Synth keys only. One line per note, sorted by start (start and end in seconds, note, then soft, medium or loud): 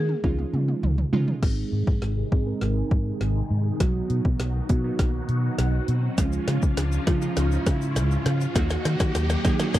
0.24 0.95 G#3 medium
0.24 0.95 C#4 medium
0.24 0.95 D#4 medium
0.24 0.95 F4 medium
1.13 1.36 G#3 medium
1.13 1.36 C#4 medium
1.13 1.36 D#4 medium
1.13 1.36 F4 loud
1.42 2.11 G#3 medium
1.42 2.11 C4 medium
1.42 2.11 D#4 medium
1.42 2.11 G#4 medium
2.32 2.43 G#3 medium
2.32 2.43 C4 medium
2.32 2.43 D#4 medium
2.32 2.43 G#4 loud
2.46 3.38 G#3 medium
2.46 3.38 C4 medium
2.46 3.38 D#4 medium
2.46 3.38 A#4 medium
3.80 4.49 F#3 medium
3.80 4.49 B3 medium
3.80 4.49 D#4 medium
3.80 4.49 F#4 medium
4.69 4.81 F#3 medium
4.69 4.81 B3 medium
4.69 4.81 D#4 medium
4.69 4.81 F#4 loud
4.84 5.75 F#3 medium
4.84 5.76 B3 medium
4.84 5.76 D#4 medium
4.84 5.76 F#4 medium
6.18 6.86 F3 medium
6.18 6.86 G#3 medium
6.18 6.86 C#4 medium
6.18 6.87 F4 medium
7.07 7.18 F3 medium
7.07 7.18 G#3 medium
7.07 7.19 C#4 medium
7.07 7.19 F4 loud
7.22 8.13 F3 medium
7.22 8.13 G#3 medium
7.22 8.13 C#4 medium
7.22 8.13 F4 medium
8.55 9.24 F#3 medium
8.55 9.24 A#3 medium
8.55 9.24 D#4 medium
8.55 9.24 F#4 loud
9.44 9.56 F#3 medium
9.44 9.56 A#3 medium
9.44 9.56 D#4 medium
9.44 9.56 G#4 loud
9.59 9.79 F#3 medium
9.59 9.79 A#3 medium
9.59 9.79 D#4 medium
9.59 9.79 F#4 loud